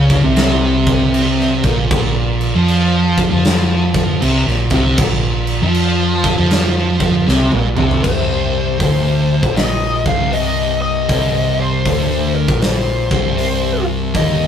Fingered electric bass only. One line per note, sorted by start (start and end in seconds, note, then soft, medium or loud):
0.00 0.20 C#2 loud
0.24 1.60 C2 medium
1.64 1.89 A#1 loud
1.91 2.50 A#1 loud
2.55 3.28 F2 medium
3.32 4.18 F2 medium
4.22 4.45 C2 medium
4.47 4.70 A#1 loud
4.71 4.96 C2 loud
4.97 5.57 A#1 loud
5.62 6.34 F2 medium
6.39 7.25 F2 medium
7.27 7.51 C2 medium
7.53 7.76 A#1 medium
7.77 8.03 C2 medium
8.04 8.77 C1 medium
8.80 9.39 D1 medium
9.43 10.02 A#1 medium
10.05 11.06 C1 medium
11.09 11.82 C1 medium
11.86 12.45 D1 loud
12.48 13.08 A#1 medium
13.11 14.11 C1 medium
14.14 14.47 D#1 loud